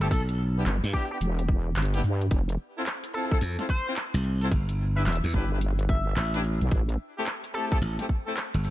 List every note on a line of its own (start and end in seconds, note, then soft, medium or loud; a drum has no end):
0.00 0.07 A3 medium
0.00 0.07 C4 medium
0.00 0.07 E4 medium
0.00 0.07 G4 loud
0.00 0.07 A4 medium
0.00 closed hi-hat soft
0.00 sub drop medium
0.11 0.65 B1 loud
0.11 0.22 A4 medium
0.11 kick loud
0.11 closed hi-hat medium
0.29 closed hi-hat medium
0.56 0.62 B3 medium
0.56 0.62 D4 medium
0.56 0.62 E4 medium
0.56 0.62 G4 medium
0.66 0.81 G1 loud
0.66 clap loud
0.66 closed hi-hat medium
0.84 0.92 G2 medium
0.84 snare soft
0.84 closed hi-hat medium
0.93 1.09 B3 medium
0.93 1.09 D4 medium
0.93 1.09 E4 medium
0.93 1.05 G4 medium
0.93 1.09 G4 loud
0.93 kick medium
0.93 shaker medium
1.11 1.17 B3 medium
1.11 1.17 D4 medium
1.11 1.17 E4 medium
1.11 1.17 G4 medium
1.21 1.74 E1 medium
1.21 closed hi-hat medium
1.39 closed hi-hat medium
1.49 kick loud
1.76 2.02 G1 loud
1.76 clap loud
1.76 closed hi-hat medium
1.82 closed hi-hat medium
1.85 closed hi-hat medium
1.94 2.00 B3 loud
1.94 2.00 D4 medium
1.94 2.00 E4 medium
1.94 2.00 G4 loud
1.94 closed hi-hat medium
1.94 closed hi-hat soft
2.00 2.30 G2 loud
2.00 closed hi-hat soft
2.00 shaker medium
2.21 closed hi-hat soft
2.31 2.57 F1 medium
2.31 kick loud
2.31 closed hi-hat medium
2.49 closed hi-hat medium
2.77 2.83 C4 medium
2.77 2.83 E4 medium
2.77 2.83 F4 medium
2.77 2.83 A4 loud
2.86 clap loud
2.86 closed hi-hat medium
3.04 closed hi-hat medium
3.14 3.29 C4 medium
3.14 3.29 E4 medium
3.14 3.29 F4 medium
3.14 3.25 A4 medium
3.14 3.29 A4 medium
3.14 shaker medium
3.31 3.38 C4 loud
3.31 3.38 E4 medium
3.31 3.38 F4 medium
3.31 3.38 A4 loud
3.31 3.38 A4 medium
3.31 kick loud
3.41 3.56 F2 loud
3.41 closed hi-hat medium
3.59 3.65 C4 medium
3.59 3.65 E4 medium
3.59 3.65 F4 medium
3.59 3.65 A4 medium
3.59 snare medium
3.59 closed hi-hat medium
3.69 3.87 C5 loud
3.69 kick medium
3.87 3.93 C4 loud
3.87 3.93 E4 medium
3.87 3.93 F4 medium
3.87 3.93 C5 loud
3.96 clap loud
3.96 closed hi-hat medium
4.14 4.50 C2 medium
4.14 closed hi-hat medium
4.24 shaker medium
4.41 4.48 C4 medium
4.41 4.48 E4 medium
4.41 4.48 F4 medium
4.41 4.48 A4 loud
4.41 closed hi-hat soft
4.51 5.05 G1 medium
4.51 kick loud
4.51 closed hi-hat medium
4.69 closed hi-hat medium
4.96 5.03 D4 medium
4.96 5.03 E4 medium
4.96 5.03 G4 medium
4.96 5.03 B4 medium
4.96 5.03 E5 medium
5.06 5.21 E1 loud
5.06 5.18 E5 medium
5.06 clap loud
5.06 closed hi-hat medium
5.12 closed hi-hat medium
5.15 closed hi-hat medium
5.24 5.32 E2 medium
5.24 snare soft
5.24 closed hi-hat medium
5.24 closed hi-hat soft
5.30 6.15 G1 loud
5.30 5.49 D4 medium
5.30 5.49 E4 medium
5.30 5.49 G4 medium
5.30 5.49 B4 loud
5.30 kick medium
5.30 closed hi-hat soft
5.30 shaker medium
5.52 5.58 D4 medium
5.52 5.58 E4 medium
5.52 5.58 G4 medium
5.52 5.58 B4 medium
5.61 closed hi-hat medium
5.79 closed hi-hat medium
5.89 6.34 E5 loud
5.89 kick loud
6.16 6.59 A1 medium
6.16 clap loud
6.16 closed hi-hat medium
6.34 6.40 D4 loud
6.34 6.40 E4 medium
6.34 6.40 G4 medium
6.34 6.40 B4 loud
6.34 closed hi-hat medium
6.44 shaker medium
6.61 6.70 B1 loud
6.61 closed hi-hat soft
6.71 6.98 A1 medium
6.71 kick loud
6.71 closed hi-hat medium
6.89 closed hi-hat soft
7.17 7.23 A3 loud
7.17 7.23 C4 medium
7.17 7.23 E4 medium
7.17 7.23 G4 loud
7.26 clap loud
7.26 closed hi-hat medium
7.44 closed hi-hat soft
7.54 7.69 A3 medium
7.54 7.69 C4 medium
7.54 7.69 E4 medium
7.54 7.69 G4 medium
7.54 7.65 A4 medium
7.54 shaker medium
7.71 7.78 A3 loud
7.71 7.78 C4 medium
7.71 7.78 E4 medium
7.71 7.78 G4 loud
7.71 7.78 A4 medium
7.71 kick loud
7.82 7.96 A1 loud
7.82 closed hi-hat medium
7.99 8.05 A3 medium
7.99 8.05 C4 medium
7.99 8.05 E4 medium
7.99 8.05 G4 medium
7.99 snare medium
7.99 closed hi-hat medium
8.09 kick medium
8.27 8.33 A3 loud
8.27 8.33 C4 medium
8.27 8.33 E4 medium
8.27 8.33 A4 loud
8.37 clap loud
8.37 closed hi-hat medium
8.54 8.70 G1 loud
8.54 closed hi-hat soft
8.64 shaker medium